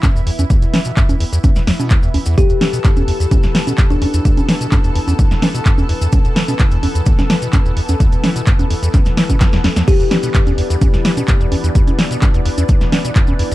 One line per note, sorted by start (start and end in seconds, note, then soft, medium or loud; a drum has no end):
0.00 0.10 G2 loud
0.00 13.55 E3 medium
0.00 13.55 B3 medium
0.00 2.36 E4 medium
0.00 kick loud
0.00 clap loud
0.00 closed hi-hat medium
0.00 high conga medium
0.00 maracas medium
0.15 0.22 E2 medium
0.15 maracas soft
0.27 0.31 E2 loud
0.27 open hi-hat loud
0.39 0.45 E2 loud
0.39 closed hi-hat medium
0.39 high conga medium
0.39 maracas medium
0.50 0.57 E2 medium
0.50 kick loud
0.50 closed hi-hat medium
0.50 maracas medium
0.62 0.66 E2 medium
0.62 closed hi-hat soft
0.62 maracas soft
0.74 0.80 E3 loud
0.74 snare medium
0.74 open hi-hat loud
0.74 high conga medium
0.85 0.92 B2 medium
0.85 closed hi-hat soft
0.85 maracas medium
0.97 1.04 G2 loud
0.97 kick loud
0.97 clap loud
0.97 closed hi-hat medium
0.97 maracas medium
1.09 1.15 E2 medium
1.09 closed hi-hat soft
1.09 high conga medium
1.09 maracas soft
1.20 1.25 E2 loud
1.20 open hi-hat loud
1.33 1.39 E2 loud
1.33 closed hi-hat medium
1.33 maracas medium
1.44 1.51 E2 medium
1.44 kick loud
1.44 closed hi-hat medium
1.44 high conga medium
1.44 maracas medium
1.56 1.60 E2 medium
1.56 snare soft
1.56 maracas soft
1.67 1.71 E2 loud
1.67 snare medium
1.67 open hi-hat loud
1.80 1.92 B2 medium
1.80 closed hi-hat soft
1.80 high conga medium
1.80 maracas medium
1.90 1.98 D2 medium
1.90 kick loud
1.90 clap loud
1.90 closed hi-hat medium
1.90 maracas medium
2.03 2.09 E2 medium
2.03 maracas soft
2.14 2.18 D2 loud
2.14 open hi-hat medium
2.14 high conga medium
2.26 2.36 E2 loud
2.26 closed hi-hat soft
2.26 maracas medium
2.38 3.04 G4 medium
2.38 9.86 A4 medium
2.38 kick loud
2.38 closed hi-hat medium
2.38 maracas medium
2.50 2.54 E2 medium
2.50 closed hi-hat soft
2.50 maracas soft
2.61 2.68 E3 loud
2.61 snare medium
2.61 open hi-hat loud
2.61 high conga medium
2.73 2.80 B2 medium
2.73 closed hi-hat soft
2.73 maracas medium
2.84 2.91 G2 loud
2.84 kick loud
2.84 clap loud
2.84 closed hi-hat medium
2.84 maracas medium
2.97 3.03 E2 medium
2.97 closed hi-hat soft
2.97 high conga medium
2.97 maracas soft
3.08 3.12 E2 loud
3.08 open hi-hat medium
3.20 3.26 E2 loud
3.20 closed hi-hat soft
3.20 maracas medium
3.31 3.38 E2 medium
3.31 kick loud
3.31 closed hi-hat medium
3.31 high conga medium
3.31 maracas medium
3.43 3.47 E2 medium
3.43 snare soft
3.43 maracas soft
3.55 3.62 E3 loud
3.55 snare medium
3.55 open hi-hat loud
3.67 3.73 B2 medium
3.67 closed hi-hat medium
3.67 high conga medium
3.67 maracas medium
3.78 3.85 G2 loud
3.78 kick loud
3.78 clap loud
3.78 closed hi-hat medium
3.78 maracas medium
3.90 3.97 E2 medium
3.90 3.98 D4 medium
3.90 maracas soft
4.02 4.06 E2 loud
4.02 4.10 D4 medium
4.02 open hi-hat medium
4.02 high conga medium
4.14 4.20 E2 loud
4.14 closed hi-hat medium
4.14 maracas medium
4.25 4.32 E2 medium
4.25 kick loud
4.25 closed hi-hat medium
4.25 maracas medium
4.37 4.41 E2 medium
4.37 closed hi-hat soft
4.37 high conga medium
4.37 maracas soft
4.49 4.55 E3 loud
4.49 snare medium
4.49 open hi-hat loud
4.61 4.67 B2 medium
4.61 closed hi-hat medium
4.61 maracas medium
4.72 4.79 G2 loud
4.72 kick loud
4.72 clap loud
4.72 closed hi-hat medium
4.72 high conga medium
4.72 maracas medium
4.84 4.90 E2 medium
4.84 closed hi-hat soft
4.84 maracas soft
4.95 5.00 E2 loud
4.95 open hi-hat medium
5.08 5.14 E2 loud
5.08 closed hi-hat medium
5.08 high conga medium
5.08 maracas medium
5.19 5.26 E2 medium
5.19 kick loud
5.19 closed hi-hat medium
5.19 maracas medium
5.31 5.35 E2 medium
5.31 snare soft
5.31 maracas soft
5.42 5.49 E3 loud
5.42 snare medium
5.42 open hi-hat loud
5.42 high conga medium
5.55 5.61 B2 medium
5.55 closed hi-hat medium
5.55 maracas medium
5.65 5.73 G2 loud
5.65 kick loud
5.65 clap loud
5.65 closed hi-hat medium
5.65 maracas medium
5.78 5.84 E2 medium
5.78 high conga medium
5.78 maracas soft
5.89 5.93 E2 loud
5.89 open hi-hat medium
6.01 6.08 E2 loud
6.01 closed hi-hat medium
6.01 maracas medium
6.12 6.19 E2 medium
6.12 kick loud
6.12 closed hi-hat medium
6.12 high conga medium
6.12 maracas medium
6.25 6.29 E2 medium
6.25 closed hi-hat soft
6.25 maracas soft
6.36 6.43 E3 loud
6.36 snare medium
6.36 open hi-hat loud
6.48 6.55 B2 medium
6.48 closed hi-hat medium
6.48 high conga medium
6.48 maracas medium
6.59 6.66 G2 loud
6.59 kick loud
6.59 clap loud
6.59 closed hi-hat medium
6.59 maracas medium
6.71 6.78 E2 medium
6.71 closed hi-hat soft
6.71 maracas soft
6.83 6.87 E2 loud
6.83 open hi-hat medium
6.83 high conga medium
6.95 7.01 E2 loud
6.95 closed hi-hat medium
6.95 maracas medium
7.06 7.13 E2 medium
7.06 kick loud
7.06 closed hi-hat medium
7.06 maracas medium
7.19 7.22 E2 medium
7.19 snare soft
7.19 high conga medium
7.19 maracas soft
7.30 7.37 E3 loud
7.30 snare medium
7.30 open hi-hat loud
7.42 7.48 B2 medium
7.42 closed hi-hat medium
7.42 maracas medium
7.53 7.60 G2 loud
7.53 kick loud
7.53 clap loud
7.53 closed hi-hat medium
7.53 high conga medium
7.53 maracas medium
7.66 7.72 E2 medium
7.66 maracas soft
7.77 7.81 E2 loud
7.77 open hi-hat medium
7.88 7.95 E2 loud
7.88 closed hi-hat medium
7.88 high conga medium
7.88 maracas medium
8.00 8.07 E2 medium
8.00 kick loud
8.00 closed hi-hat medium
8.00 maracas medium
8.12 8.16 E2 medium
8.12 closed hi-hat soft
8.12 maracas soft
8.24 8.30 E3 loud
8.24 snare medium
8.24 open hi-hat loud
8.24 high conga medium
8.36 8.42 B2 medium
8.36 closed hi-hat medium
8.36 maracas medium
8.47 8.54 G2 loud
8.47 kick loud
8.47 clap loud
8.47 closed hi-hat medium
8.47 maracas medium
8.59 8.65 E2 medium
8.59 closed hi-hat soft
8.59 high conga medium
8.59 maracas soft
8.70 8.75 E2 loud
8.70 open hi-hat loud
8.83 8.89 E2 loud
8.83 closed hi-hat medium
8.83 maracas medium
8.94 9.01 E2 medium
8.94 kick loud
8.94 clap soft
8.94 closed hi-hat medium
8.94 high conga medium
8.94 maracas medium
9.06 9.10 E2 medium
9.06 snare soft
9.06 closed hi-hat soft
9.06 maracas soft
9.17 9.24 E3 loud
9.17 snare medium
9.17 open hi-hat loud
9.30 9.36 B2 medium
9.30 kick medium
9.30 closed hi-hat medium
9.30 high conga medium
9.30 maracas medium
9.40 9.48 G2 loud
9.40 kick loud
9.40 snare medium
9.40 clap loud
9.40 closed hi-hat medium
9.40 maracas medium
9.53 9.59 E2 medium
9.53 snare medium
9.53 maracas soft
9.64 9.68 E2 loud
9.64 snare medium
9.64 open hi-hat medium
9.64 high conga medium
9.76 9.83 E2 loud
9.76 snare medium
9.76 closed hi-hat medium
9.76 maracas medium
9.88 9.94 E2 medium
9.88 13.55 D4 medium
9.88 10.54 G4 medium
9.88 kick loud
9.88 closed hi-hat medium
9.88 crash medium
9.88 maracas medium
10.00 10.04 E2 medium
10.00 closed hi-hat soft
10.00 maracas soft
10.11 10.18 E3 loud
10.11 snare medium
10.11 open hi-hat loud
10.11 high conga medium
10.23 10.30 B2 medium
10.23 closed hi-hat medium
10.23 maracas medium
10.34 10.41 G2 loud
10.34 kick loud
10.34 clap loud
10.34 closed hi-hat medium
10.34 maracas medium
10.47 10.53 E2 medium
10.47 closed hi-hat soft
10.47 high conga medium
10.47 maracas soft
10.58 10.62 E2 loud
10.58 open hi-hat medium
10.70 10.76 E2 loud
10.70 closed hi-hat medium
10.70 maracas medium
10.81 10.88 E2 medium
10.81 kick loud
10.81 closed hi-hat medium
10.81 high conga medium
10.81 maracas medium
10.94 10.97 E2 medium
10.94 snare soft
10.94 maracas soft
11.05 11.12 E3 loud
11.05 snare medium
11.05 open hi-hat loud
11.17 11.23 B2 medium
11.17 closed hi-hat medium
11.17 high conga medium
11.17 maracas medium
11.28 11.35 G2 loud
11.28 kick loud
11.28 clap loud
11.28 closed hi-hat medium
11.28 maracas medium
11.41 11.47 E2 medium
11.41 maracas soft
11.52 11.56 E2 loud
11.52 open hi-hat medium
11.52 high conga medium
11.64 11.70 E2 loud
11.64 closed hi-hat medium
11.64 maracas medium
11.75 11.82 E2 medium
11.75 kick loud
11.75 closed hi-hat medium
11.75 maracas medium
11.87 11.91 E2 medium
11.87 closed hi-hat soft
11.87 high conga medium
11.87 maracas soft
11.99 12.05 E3 loud
11.99 snare medium
11.99 open hi-hat loud
12.11 12.17 B2 medium
12.11 closed hi-hat medium
12.11 maracas medium
12.22 12.29 G2 loud
12.22 kick loud
12.22 clap loud
12.22 closed hi-hat medium
12.22 high conga medium
12.22 maracas medium
12.34 12.40 E2 medium
12.34 closed hi-hat soft
12.34 maracas soft
12.46 12.50 E2 loud
12.46 open hi-hat loud
12.58 12.64 E2 loud
12.58 closed hi-hat medium
12.58 high conga medium
12.58 maracas medium
12.69 12.76 E2 medium
12.69 kick loud
12.69 closed hi-hat medium
12.69 maracas medium
12.81 12.85 E2 medium
12.81 snare soft
12.81 maracas soft
12.92 12.99 E3 loud
12.92 snare medium
12.92 open hi-hat loud
12.92 high conga medium
13.05 13.11 B2 medium
13.05 closed hi-hat medium
13.05 maracas medium
13.15 13.23 G2 loud
13.15 kick loud
13.15 clap loud
13.15 closed hi-hat medium
13.15 maracas medium
13.27 13.34 E2 medium
13.27 high conga medium
13.27 maracas soft
13.39 13.43 E2 loud
13.39 open hi-hat loud
13.52 13.55 E2 loud
13.52 closed hi-hat medium